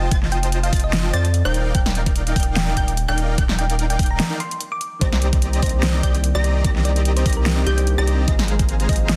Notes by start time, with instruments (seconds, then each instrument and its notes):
0.11 sub bass F1, supersaw synth F4 C5 D#5 G5 A5, synth pluck A6, kick, closed hi-hat
0.23 snare
0.32 synth pluck G5, closed hi-hat
0.43 closed hi-hat
0.52 closed hi-hat
0.63 synth pluck F5, closed hi-hat
0.73 sub bass F1, supersaw synth F4 C5 D#5 G5 A5, synth pluck A6, kick, closed hi-hat, open hi-hat
0.80 closed hi-hat
0.84 synth pluck D#5
0.93 snare, closed hi-hat
1.13 sub bass F2, supersaw synth F4 C5 D#5 G5 A5, synth pluck D5 A6, closed hi-hat
1.25 closed hi-hat
1.34 closed hi-hat
1.45 sub bass D#1, supersaw synth D#4 A#4 D5 F5 G5, synth pluck C5 G6
1.54 closed hi-hat
1.75 sub bass D#1, supersaw synth D#4 A#4 D5 F5 G5, synth pluck G5 G6, kick, closed hi-hat
1.86 snare
1.95 closed hi-hat
2.06 kick, closed hi-hat
2.16 closed hi-hat
2.27 closed hi-hat
2.36 sub bass D#1, supersaw synth D#4 A#4 D5 F5 G5, synth pluck G5 G6, kick, closed hi-hat, open hi-hat
2.43 closed hi-hat
2.56 synth pluck G5, snare, closed hi-hat
2.77 sub bass D#1, supersaw synth D#4 A#4 D5 F5 G5, synth pluck G5 G6, kick, closed hi-hat
2.88 closed hi-hat
2.97 closed hi-hat
3.08 sub bass D#1, supersaw synth D#4 A#4 D5 F5 G5, synth pluck G5 G6
3.18 closed hi-hat
3.38 sub bass D#1, supersaw synth D#4 A#4 D5 F5 G5, synth pluck G6, kick, closed hi-hat
3.49 snare
3.59 synth pluck G5, closed hi-hat
3.70 closed hi-hat
3.79 closed hi-hat
3.90 synth pluck G5, closed hi-hat
3.99 sub bass D#1, supersaw synth D#4 A#4 D5 F5 G5, synth pluck G6, kick, closed hi-hat, open hi-hat
4.11 synth pluck A#5
4.20 snare, closed hi-hat
4.40 synth pluck C6, closed hi-hat
4.51 closed hi-hat
4.61 closed hi-hat
4.72 synth pluck D6
4.81 closed hi-hat
4.99 sub bass C2, tine electric piano D#3 A#3 C4, supersaw synth C4 G4 D5 D#5 A#5, synth pluck C5 A#6, kick, closed hi-hat
5.03 tine electric piano G4
5.12 snare
5.22 closed hi-hat
5.33 kick, closed hi-hat
5.42 closed hi-hat
5.53 closed hi-hat
5.61 sub bass C2, tine electric piano D#3 A#3 C4 C5, supersaw synth C4 G4 D5 D#5 A#5, synth pluck C5 A#6, kick, open hi-hat
5.66 closed hi-hat
5.69 closed hi-hat
5.83 synth pluck C5, snare, closed hi-hat
6.03 sub bass C2, supersaw synth C4 G4 D5 D#5 G5, synth pluck D5 G6, kick, closed hi-hat
6.15 closed hi-hat
6.24 closed hi-hat
6.35 sub bass C2, supersaw synth C4 G4 D5 D#5 A#5, synth pluck D5 A#6
6.44 closed hi-hat
6.62 sub bass C2, tine electric piano D#3 A#3 C4, supersaw synth C4 G4 D5 D#5 A#5, synth pluck A#6, kick, closed hi-hat
6.67 tine electric piano G4
6.76 snare
6.85 synth pluck D5, closed hi-hat
6.96 closed hi-hat
7.05 closed hi-hat
7.17 synth pluck C5, closed hi-hat
7.25 sub bass C2, tine electric piano D#3 A#3 C4 G4, supersaw synth C4 G4 D5 D#5 A#5, synth pluck A#6, kick, open hi-hat
7.30 closed hi-hat
7.33 closed hi-hat
7.37 synth pluck A#4
7.46 snare, closed hi-hat
7.65 sub bass C2, tine electric piano D#3 A#3 C4 D4 G4, supersaw synth C4 G4 D5 D#5 G5, synth pluck G4 G6, closed hi-hat
7.78 closed hi-hat
7.87 closed hi-hat
7.98 sub bass C2, supersaw synth C4 G4 D5 D#5 A#5, synth pluck G4 A#6
8.07 closed hi-hat
8.26 sub bass G#1, tine electric piano F3 A#3 C4 D#4 G#4, supersaw synth G#3 G#4 C5 F5 A#5, synth pluck D#5 A#6, kick, closed hi-hat
8.39 snare
8.48 closed hi-hat
8.59 kick, closed hi-hat
8.69 closed hi-hat
8.80 closed hi-hat
8.87 sub bass G#1, tine electric piano F3 A#3 C4 D#4 C5, supersaw synth G#3 G#4 C5 F5 A#5, synth pluck D#5 A#6, kick, open hi-hat
8.93 closed hi-hat
8.96 closed hi-hat
9.09 synth pluck D#5, snare, closed hi-hat